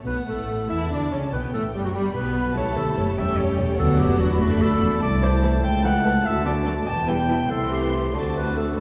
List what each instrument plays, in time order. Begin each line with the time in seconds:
0.06 double bass section B1, cello section B2, violin section B3 F#5, french horn section B3, viola section B3, clarinet B4
0.28 double bass section A1, cello section A2, viola section A3, violin section A3, french horn section A3, clarinet A4
0.70 double bass section E2, cello section E3, violin section E4 A5, french horn section E4, viola section E4, clarinet E5
0.91 double bass section D2, cello section D3, french horn section D4, violin section D4, viola section D4, clarinet D5
1.11 double bass section C#2, cello section C#3, violin section C#4, viola section C#4, french horn section C#4, clarinet C#5
1.32 double bass section B1, cello section B2, viola section B3, violin section B3 G5, french horn section B3, clarinet B4
1.53 double bass section A1, cello section A2, violin section A3, french horn section A3, viola section A3, clarinet A4
1.74 double bass section G1, cello section G2, viola section G3, violin section G3, french horn section G3, clarinet G4
1.85 cello section F#2, viola section F#3, french horn section F#3, clarinet F#4, violin section F#4
1.94 double bass section G1, cello section G2, violin section G3 B5, viola section G3, french horn section G3, clarinet G4
2.14 double bass section B1, cello section B2, violin section B3, french horn section B3, viola section B3, clarinet B4
2.55 cello section C#2, double bass section C#2, french horn section A3 G4, viola section A3, violin section E4 A4 A5, clarinet C#5
2.76 cello section D2, double bass section D2, clarinet A4
2.97 double bass section F#1, cello section F#2, clarinet C#5
3.17 double bass section E1, cello section E2, viola section G3, violin section C#4 G5, clarinet E5
3.37 double bass section F#1, cello section F#2, clarinet C#5
3.58 double bass section E1, cello section E2
3.78 double bass section D2, cello section D2, timpani D3, viola section F#3 B3, violin section D4 A4 F#5, french horn section F#4, clarinet A4
3.99 double bass section F#1, cello section F#2, clarinet G4
4.19 double bass section E1, cello section E2, clarinet F#4
4.31 clarinet E4
4.39 double bass section F#1, cello section F#2, viola section A3, violin section D4 A4 B5, clarinet F#4
4.60 double bass section D2, cello section D2, clarinet A4
4.81 double bass section E1, cello section E2
5.00 cello section C2, double bass section C2, french horn section A3 E4, clarinet D5, violin section A5
5.22 viola section E3 A3, violin section E4 A4, clarinet C5
5.43 viola section E3 A3, violin section E4 A4
5.63 cello section C#2, double bass section C#2, clarinet G5
5.84 viola section E3 A3, violin section E4 A4, clarinet F#5
6.05 viola section E3 A3, violin section E4 A4
6.24 cello section D2, double bass section D2, french horn section F#4, clarinet E5, violin section A5
6.45 viola section F#3 A3, violin section D4 A4, clarinet D5
6.64 viola section F#3 A3, violin section D4 A4
6.86 double bass section E1, cello section E2, french horn section B3 E4, violin section G5, clarinet A5
7.07 viola section E3 G3, violin section B3 E4, clarinet G5
7.28 viola section E3 G3, violin section B3 E4
7.48 double bass section C2, cello section C2, viola section E3 A3, violin section C4 E4 C6, clarinet A4
7.52 french horn section A3
7.71 clarinet G4
8.14 double bass section D2, cello section D2, viola section D3 A3, violin section C4 F#4 A5, french horn section C4 F#4, clarinet D5
8.36 clarinet B4
8.57 clarinet A4